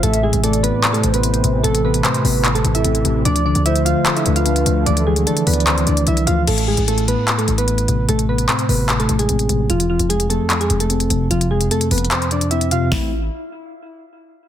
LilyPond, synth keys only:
\new Staff \with { instrumentName = "Synth keys" } { \time 4/4 \key a \minor \tempo 4 = 149 <a a'>8 <gis gis'>8 <a a'>8 <b b'>8. <a a'>8 <b b'>4~ <b b'>16 | <a a'>8 <b b'>8 <c' c''>8 <b b'>8. <a a'>8 <e' e''>4~ <e' e''>16 | <d' d''>8 <d' d''>8 <e' e''>8 <f' f''>8. <e' e''>8 <f' f''>4~ <f' f''>16 | <d' d''>8 <gis gis'>8 <a a'>8 <b b'>8 <c' c''>8 <d' d''>8 <e' e''>8 <f' f''>8 |
<a a'>8 <gis gis'>8 <a a'>8 <b b'>8. <a a'>8 <b b'>4~ <b b'>16 | <a a'>8 <b b'>8 <c' c''>8 <b b'>8. <a a'>8 <gis gis'>4~ <gis gis'>16 | <f f'>8 <f f'>8 <gis gis'>8 <a a'>8. <gis gis'>8 <a a'>4~ <a a'>16 | <f f'>8 <gis gis'>8 <a a'>8 <b b'>8 <c' c''>8 <d' d''>8 <e' e''>8 <f' f''>8 |
e'8 r2. r8 | }